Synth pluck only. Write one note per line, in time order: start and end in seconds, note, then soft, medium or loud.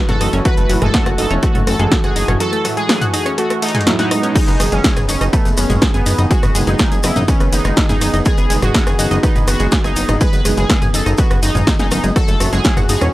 0.09 0.14 F#4 loud
0.09 0.14 F#5 medium
0.21 0.29 D#4 medium
0.21 0.29 D#5 medium
0.33 0.41 C#4 loud
0.33 0.41 C#5 medium
0.45 0.57 F#3 loud
0.45 0.57 F#4 medium
0.57 0.66 A3 medium
0.57 0.66 A4 medium
0.69 0.75 F#3 loud
0.69 0.75 F#4 medium
0.82 0.87 G#3 loud
0.82 0.87 G#4 medium
0.94 1.02 F#3 medium
0.94 1.02 F#4 medium
1.06 1.11 F#4 loud
1.06 1.11 F#5 medium
1.18 1.27 D#4 medium
1.18 1.27 D#5 medium
1.31 1.39 C#4 loud
1.31 1.39 C#5 medium
1.43 1.48 A3 loud
1.43 1.48 A4 medium
1.55 1.63 A3 medium
1.55 1.63 A4 medium
1.67 1.76 A3 medium
1.67 1.76 A4 medium
1.79 1.84 G#3 loud
1.79 1.84 G#4 medium
1.92 2.03 F#3 medium
1.92 2.03 F#4 medium
2.04 2.09 F#4 loud
2.04 2.09 F#5 medium
2.16 2.24 D#4 medium
2.16 2.24 D#5 medium
2.28 2.37 C#4 loud
2.28 2.37 C#5 medium
2.40 2.52 F#3 loud
2.40 2.52 F#4 medium
2.53 2.61 A3 medium
2.53 2.61 A4 medium
2.65 2.70 F#3 loud
2.65 2.70 F#4 medium
2.77 2.82 G#3 loud
2.77 2.82 G#4 medium
2.89 2.98 F#3 medium
2.89 2.98 F#4 medium
3.01 3.06 F#4 loud
3.01 3.06 F#5 medium
3.14 3.22 D#4 medium
3.14 3.22 D#5 medium
3.26 3.34 C#4 loud
3.26 3.34 C#5 medium
3.38 3.43 A3 loud
3.38 3.43 A4 medium
3.50 3.59 A3 medium
3.50 3.59 A4 medium
3.62 3.71 A3 medium
3.62 3.71 A4 medium
3.75 3.80 G#3 loud
3.75 3.80 G#4 medium
3.87 3.98 F#3 medium
3.87 3.98 F#4 medium
3.99 4.04 F#4 loud
3.99 4.04 F#5 medium
4.11 4.20 D#4 medium
4.11 4.20 D#5 medium
4.23 4.32 C#4 loud
4.23 4.32 C#5 medium
4.35 4.47 G#3 loud
4.35 4.47 G#4 medium
4.48 4.56 B3 medium
4.48 4.56 B4 medium
4.60 4.65 G#3 loud
4.60 4.65 G#4 medium
4.72 4.77 G#3 loud
4.72 4.77 G#4 medium
4.84 4.93 G#3 medium
4.84 4.93 G#4 medium
4.96 5.02 G#4 loud
4.96 5.01 G#5 medium
5.09 5.17 D#4 medium
5.09 5.17 D#5 medium
5.21 5.29 D#4 loud
5.21 5.29 D#5 medium
5.33 5.38 B3 loud
5.33 5.38 B4 medium
5.45 5.54 B3 medium
5.45 5.54 B4 medium
5.57 5.66 B3 medium
5.57 5.66 B4 medium
5.70 5.75 G#3 loud
5.70 5.75 G#4 medium
5.82 5.93 G#3 medium
5.82 5.93 G#4 medium
5.94 5.99 G#4 loud
5.94 5.99 G#5 medium
6.06 6.15 D#4 medium
6.06 6.15 D#5 medium
6.18 6.27 D#4 loud
6.18 6.27 D#5 medium
6.31 6.42 G#3 loud
6.31 6.42 G#4 medium
6.43 6.51 B3 medium
6.43 6.51 B4 medium
6.55 6.60 G#3 loud
6.55 6.60 G#4 medium
6.67 6.72 G#3 loud
6.67 6.72 G#4 medium
6.79 6.88 G#3 medium
6.79 6.88 G#4 medium
6.92 6.97 G#4 loud
6.92 6.97 G#5 medium
7.04 7.12 D#4 medium
7.04 7.12 D#5 medium
7.16 7.24 D#4 loud
7.16 7.24 D#5 medium
7.28 7.33 B3 loud
7.28 7.33 B4 medium
7.40 7.49 B3 medium
7.40 7.49 B4 medium
7.53 7.61 B3 medium
7.53 7.61 B4 medium
7.65 7.70 G#3 loud
7.65 7.70 G#4 medium
7.77 7.89 G#3 medium
7.77 7.88 G#4 medium
7.89 7.94 G#4 loud
7.89 7.94 G#5 medium
8.01 8.10 D#4 medium
8.01 8.10 D#5 medium
8.14 8.22 D#4 loud
8.14 8.22 D#5 medium
8.26 8.37 G#3 loud
8.26 8.37 G#4 medium
8.38 8.46 B3 medium
8.38 8.46 B4 medium
8.50 8.55 G#3 loud
8.50 8.55 G#4 medium
8.62 8.67 G#3 loud
8.62 8.67 G#4 medium
8.75 8.83 G#3 medium
8.75 8.83 G#4 medium
8.87 8.92 G#4 loud
8.87 8.92 G#5 medium
8.99 9.07 D#4 medium
8.99 9.07 D#5 medium
9.11 9.19 D#4 loud
9.11 9.20 D#5 medium
9.23 9.28 B3 loud
9.23 9.28 B4 medium
9.36 9.44 B3 medium
9.36 9.44 B4 medium
9.48 9.56 B3 medium
9.48 9.56 B4 medium
9.60 9.65 G#3 loud
9.60 9.65 G#4 medium
9.72 9.84 G#3 medium
9.72 9.83 G#4 medium
9.84 9.89 G#4 loud
9.84 9.89 G#5 medium
9.96 10.05 D#4 medium
9.96 10.05 D#5 medium
10.09 10.17 D#4 loud
10.09 10.17 D#5 medium
10.21 10.32 G#3 loud
10.21 10.32 G#4 medium
10.33 10.41 B3 medium
10.33 10.41 B4 medium
10.45 10.50 G#3 loud
10.45 10.50 G#4 medium
10.57 10.62 G#3 loud
10.57 10.62 G#4 medium
10.69 10.78 G#3 medium
10.69 10.78 G#4 medium
10.82 10.87 G#4 loud
10.82 10.87 G#5 medium
10.94 11.02 D#4 medium
10.94 11.02 D#5 medium
11.06 11.15 D#4 loud
11.06 11.15 D#5 medium
11.18 11.23 B3 loud
11.18 11.23 B4 medium
11.31 11.39 B3 medium
11.31 11.39 B4 medium
11.43 11.48 D#4 medium
11.43 11.48 D#5 medium
11.55 11.63 G#3 medium
11.55 11.63 G#4 medium
11.67 11.76 D#4 medium
11.67 11.76 D#5 medium
11.79 11.88 G#3 loud
11.79 11.88 G#4 medium
11.91 12.00 D#3 medium
11.91 12.00 D#4 medium
12.04 12.12 G#3 medium
12.04 12.12 G#4 medium
12.16 12.28 F#3 loud
12.16 12.28 F#4 medium
12.28 12.37 A3 medium
12.28 12.37 A4 medium
12.40 12.45 F#3 loud
12.40 12.45 F#4 medium
12.53 12.58 G#3 loud
12.53 12.58 G#4 medium
12.65 12.73 F#3 medium
12.65 12.73 F#4 medium
12.77 12.82 F#4 loud
12.77 12.82 F#5 medium
12.89 12.98 D#4 medium
12.89 12.98 D#5 medium
13.01 13.10 C#4 loud
13.01 13.10 C#5 medium